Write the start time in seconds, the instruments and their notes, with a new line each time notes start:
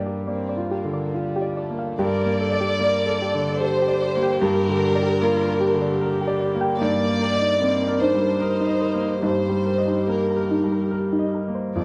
Already playing: grand piano G2 A#3 G4
0.00 grand piano D5
0.06 violin section A#3, synth pluck G4
0.27 grand piano A#3, violin section C4, synth pluck D5
0.49 synth pluck D5
0.57 grand piano F4
0.71 violin section A#3, synth pluck G4
0.85 grand piano D3
0.93 synth pluck D5
1.14 violin section G3, grand piano F4
1.36 synth pluck G4
1.41 grand piano D5
1.57 violin section A3, synth pluck D5
1.70 grand piano A#3
1.79 synth pluck F5
1.99 grand piano G2, synth pluck G4, viola A#4, violin section D5
2.25 grand piano A#3
2.41 viola A4, synth pluck D5
2.53 grand piano D5
2.61 synth pluck G4
2.79 grand piano A#3, viola A#4, synth pluck D5
3.02 synth pluck D5
3.06 grand piano A4
3.20 synth pluck G4, viola A4
3.34 grand piano D3
3.43 synth pluck D5
3.61 viola G4, grand piano A4, violin section C5
3.82 synth pluck G4
3.88 grand piano D5
4.02 synth pluck D5
4.15 grand piano A#3
4.23 synth pluck G5
4.41 grand piano G2, synth pluck G4, violin section A#4
4.69 grand piano D3
4.83 synth pluck D5
4.95 grand piano D5
5.03 synth pluck G4
5.21 grand piano A#3, viola F4, synth pluck D5
5.42 synth pluck D5
5.47 grand piano A#4
5.60 viola G4, synth pluck G4
5.74 grand piano D3
5.82 synth pluck D5
6.01 grand piano A#4
6.21 synth pluck G4
6.27 grand piano D5
6.40 synth pluck D5
6.55 grand piano A#3
6.61 synth pluck G5
6.79 grand piano G2, viola A#3, synth pluck D#4, violin section D5
7.09 grand piano A#3
7.22 synth pluck A#4
7.35 grand piano D#4
7.42 synth pluck D#4
7.61 grand piano A#3, viola C4, synth pluck A#4
7.82 synth pluck A#4
7.88 grand piano A#4
7.99 viola D4, synth pluck D#4, violin section C5
8.15 grand piano G3
8.22 synth pluck A#4
8.40 viola D#4, grand piano A#4
8.61 synth pluck D#4
8.67 grand piano D#5
8.81 synth pluck A#4
8.94 grand piano A#3
9.03 synth pluck C5
9.23 grand piano G2, synth pluck D#4, viola G4, violin section C5
9.50 grand piano G3
9.66 synth pluck A#4
9.78 grand piano D#5
9.88 synth pluck D#4
10.07 grand piano A#3, synth pluck A#4, violin section A#4
10.31 synth pluck A#4
10.36 grand piano A#4
10.51 synth pluck D#4
10.64 grand piano G3
10.72 synth pluck A#4
10.91 grand piano A#4
11.13 synth pluck D#4
11.19 grand piano D#5
11.35 synth pluck A#4
11.48 grand piano A#3
11.55 synth pluck C5
11.75 grand piano F2, synth pluck F4, violin section D5